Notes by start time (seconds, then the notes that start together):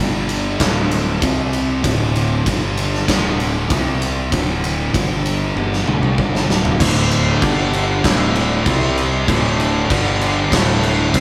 Already playing: G2 D3 D4 A4
0.00 G1 G3
0.29 ride
0.59 D1 D2 A2 D3 D5, kick, snare, ride
0.91 ride
1.21 C2 C3 G3 C4 G4, kick, ride
1.53 ride
1.82 D1 D2 A2 D3 D4 A4 D5, kick, ride
2.16 ride
2.45 G1 G2 D3 G3, kick, ride
2.77 ride
2.94 snare
3.07 D1 D2 A2 D3 A4 D5, kick, snare, ride
3.40 ride
3.70 C2 C3 G3 C4 G4, kick, ride
4.02 ride
4.31 D1 D2 A2 D3 D4 A4, kick, ride
4.64 ride
4.93 G1 G2 D3 G3, kick, ride
5.26 ride
5.56 G1 G2 D3 G3 D5, high tom
5.73 snare
5.86 D1 D2 A2, mid tom
6.01 C2 C3 G3, mid tom
6.18 G1 G2 D3 G3, kick
6.35 snare
6.49 D1 D2 A2 D3, snare
6.65 floor tom
6.80 D1 D2 A2 D3 D4 A4 D5, kick, crash
7.11 crash
7.42 G1 G2 D3 G3, kick, crash
7.73 crash
8.04 D1 D2 A2 D3 A4 D5, kick, snare, crash
8.35 crash
8.66 C2 C3 G3 C4 G4, kick, crash
8.98 crash
9.28 D1 D2 A2 D3 D4 A4, kick, crash
9.60 crash
9.89 G1 G2 D3 G3, kick, crash
10.21 crash
10.52 D1 D2 A2 D3 D4 A4 D5, kick, snare, crash
10.83 crash
11.14 C2 C3 G3 C4 G4, kick, crash